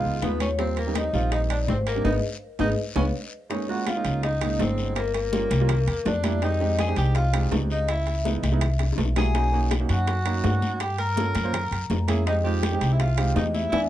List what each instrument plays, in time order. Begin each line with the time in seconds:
Already playing: grand piano G#3 B3 D#4 F4, tenor saxophone F4, vibraphone F5
0.04 upright bass C#2, high bongo, high conga
0.22 upright bass D#2, grand piano G#3 B3 D#4 F4, tenor saxophone B3, vibraphone B4, high bongo, low bongo, high conga, high timbale, short guiro
0.40 tenor saxophone C#4, vibraphone C#5, high bongo, high conga, high timbale, short guiro
0.58 grand piano G3 A#3 C4 F4, tenor saxophone C4, vibraphone C5, high bongo, high conga, high timbale, long guiro
0.77 tenor saxophone A#3, vibraphone A#4, high conga, high timbale
0.87 grand piano G3 A#3 C4 D#4
0.95 tenor saxophone D#4, vibraphone D#5, high bongo, high conga, high timbale, short guiro
1.13 upright bass A#1, grand piano G3 A#3 C4 D#4, tenor saxophone F4, vibraphone F5, high bongo, high conga, short guiro
1.32 tenor saxophone D#4, vibraphone D#5, high bongo, high conga, high timbale, long guiro
1.50 tenor saxophone D4, vibraphone D5, high bongo, high conga, high timbale
1.68 upright bass G#1, tenor saxophone C4, vibraphone C5, high bongo, low bongo, high conga, low timbale, short guiro
1.87 tenor saxophone A#3, vibraphone A#4, high bongo, high conga, high timbale, short guiro
1.95 grand piano G3 A#3 C4 D4
2.04 upright bass G#1, grand piano G#3 B3 D#4, tenor saxophone D#4, vibraphone G#4 B4 D#5, low bongo, high conga, high timbale, long guiro
2.59 upright bass G#1, grand piano G#3 B3 D#4, tenor saxophone D#4, vibraphone G#4 B4 D#5, low bongo, high conga, high timbale, long guiro
2.96 upright bass C#2, grand piano G#3 B3 C#4, tenor saxophone C#4, vibraphone B4 C#5 F5, low bongo, high conga, high timbale
3.50 grand piano G#3 A#3 C#4 D#4, tenor saxophone C#4, vibraphone C#5, high bongo, high conga, high timbale, long guiro
3.68 grand piano G#3 A#3 C#4 F4, tenor saxophone F#4, vibraphone F#5, high bongo, high conga
3.87 tenor saxophone F4, vibraphone F5, high bongo, high conga, high timbale, low timbale, short guiro
3.96 grand piano G#3 A#3 C#4 D#4
4.05 upright bass C#2, high bongo, high conga, high timbale, short guiro
4.23 tenor saxophone D#4, vibraphone D#5, high bongo, high conga, high timbale, long guiro
4.41 grand piano C#3 G#3 A#3 D#4, high bongo, high conga, high timbale
4.59 upright bass G1, tenor saxophone C4, vibraphone C5, high bongo, low bongo, high conga, low timbale, short guiro
4.78 short guiro
4.96 tenor saxophone A#3, vibraphone A#4, high bongo, high conga, high timbale, long guiro
5.14 tenor saxophone A#3, vibraphone A#4, high bongo, high conga, high timbale
5.32 grand piano G3 A#3 C#4 F4, high bongo, high conga, low timbale, short guiro
5.50 upright bass C2, high bongo, high conga, high timbale, short guiro
5.60 grand piano G3 A#3 C#4 F4
5.69 high bongo, high conga, low conga, high timbale, long guiro
5.87 upright bass E2, high bongo, high conga, low conga, high timbale
6.05 upright bass F2, tenor saxophone D4, vibraphone D5, high bongo, low bongo, high conga, low timbale, short guiro
6.24 grand piano G3 A#3 D4 E4, high conga, high timbale, short guiro
6.41 grand piano G#3 C4 D#4 G4, tenor saxophone D#4, vibraphone D#5, high bongo, high conga, high timbale, long guiro
6.60 grand piano G#3 C4 D#4 G4, high bongo, high conga
6.79 tenor saxophone G#4, vibraphone G#5, high bongo, high conga, high timbale, low timbale, short guiro
6.87 grand piano G#3 C4 D#4 G4
6.96 upright bass C2, tenor saxophone G4, vibraphone G5, high bongo, high conga, high timbale, short guiro
7.15 tenor saxophone F4, vibraphone F5, high bongo, high conga, high timbale, long guiro
7.33 grand piano G#3 C4 D#4 G4, high bongo, high conga, high timbale
7.52 upright bass C#2, high bongo, low bongo, high conga, low timbale, short guiro
7.70 tenor saxophone D#4, vibraphone D#5, short guiro
7.88 tenor saxophone E4, vibraphone E5, high bongo, high conga, high timbale, long guiro
8.07 high bongo, high conga, high timbale
8.25 grand piano G#3 B3 D#4 E4, high bongo, high conga, low timbale, short guiro
8.43 upright bass C2, high bongo, high conga, high timbale, short guiro
8.52 grand piano G#3 B3 D#4 E4
8.61 high bongo, high conga, low conga, high timbale, long guiro
8.79 high bongo, high conga, high timbale
8.93 high bongo
8.98 upright bass B1, high conga, low timbale, short guiro
9.05 low bongo
9.16 grand piano G3 A#3 E4 F#4, tenor saxophone G#4, vibraphone G#5, low bongo, high conga, high timbale, short guiro
9.34 grand piano A#3 C#4 D#4 F#4, high bongo, high conga, high timbale, long guiro
9.52 grand piano A#3 C#4 D#4 F#4, high bongo, high conga
9.71 high bongo, high conga, high timbale, low timbale, short guiro
9.80 grand piano A#3 C#4 D#4 F#4
9.89 upright bass F#2, tenor saxophone F#4, vibraphone F#5, high bongo, high conga, high timbale, short guiro
10.07 high bongo, high conga, high timbale, long guiro
10.25 grand piano A#3 C#4 D#4 F#4, high bongo, high conga, high timbale
10.44 upright bass G2, high bongo, low bongo, high conga, low timbale, short guiro
10.62 high conga, short guiro
10.80 tenor saxophone G4, vibraphone G5, high bongo, high conga, high timbale, long guiro
10.98 tenor saxophone A#4, vibraphone A#5, high bongo, high conga, high timbale
11.16 grand piano A#3 C#4 F4 A4, high bongo, high conga, low timbale, short guiro
11.35 upright bass F#2, high bongo, high conga, high timbale, short guiro
11.44 grand piano A#3 C#4 F4 C5
11.53 high bongo, high conga, low conga, high timbale, long guiro
11.71 upright bass F#2, high bongo, high conga, high timbale
11.90 upright bass F2, high bongo, low bongo, high conga, low timbale, short guiro
12.08 grand piano A#3 C#4 E4 G#4, high conga, high timbale, short guiro
12.26 grand piano G#3 C4 D#4 G4, tenor saxophone D#4, vibraphone D#5, high bongo, high conga, high timbale, long guiro
12.44 grand piano G#3 C4 D#4 F4, tenor saxophone G4, vibraphone G5, high bongo, high conga
12.63 high bongo, high conga, high timbale, low timbale, short guiro
12.72 grand piano G#3 C4 D#4 G4
12.81 upright bass C2, high bongo, high conga, high timbale, short guiro
12.92 tenor saxophone E4, vibraphone E5
13.00 tenor saxophone F4, vibraphone F5, high bongo, high conga, high timbale, long guiro
13.18 grand piano G#3 C4 D#4 G4, high bongo, high conga, high timbale
13.36 upright bass E2, tenor saxophone D#4, vibraphone D#5, high bongo, low bongo, high conga, low timbale, short guiro
13.54 tenor saxophone E4, vibraphone E5, high conga, short guiro
13.72 upright bass E2, grand piano B3 D4 E4, tenor saxophone E4, vibraphone D5 E5 G#5, low bongo, high conga, high timbale, long guiro